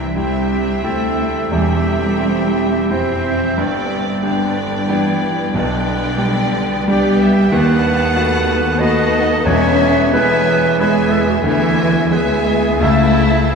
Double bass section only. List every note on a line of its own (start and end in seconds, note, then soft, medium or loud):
0.00 0.80 C2 soft
0.84 1.52 D2 medium
1.52 2.88 E2 soft
2.91 3.57 F2 medium
3.58 5.54 G2 medium
5.55 6.88 B1 medium
6.88 7.52 C2 medium
7.53 9.42 D#2 medium
9.46 11.41 E2 medium
11.45 12.78 D2 medium
12.80 13.54 C#2 medium